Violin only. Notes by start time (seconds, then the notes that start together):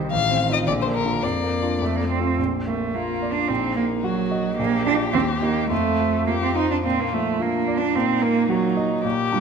0.11 F5
0.53 D#5
0.67 D5
0.81 C5
0.95 A#4
1.23 D5
2.94 F4
3.49 D#4
4.04 F#4
4.58 G4
5.70 F4
6.27 G4
6.55 F4
6.84 F4
7.40 D4
7.95 D#4
9.04 G4